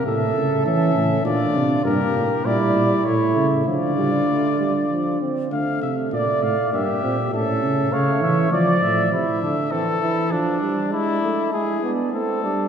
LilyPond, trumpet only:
\new Staff \with { instrumentName = "Trumpet" } { \time 3/4 \key d \minor \tempo 4 = 100 e''4 e''4 d''4 | bes'4 d''4 cis''4 | d''2~ d''8 r8 | f''8 e''8 d''8 f''8 e''4 |
e''4 f''8 e''8 d''8 e''8 | e''4 a'4 d'4 | e'4 gis'8 r8 a'4 | }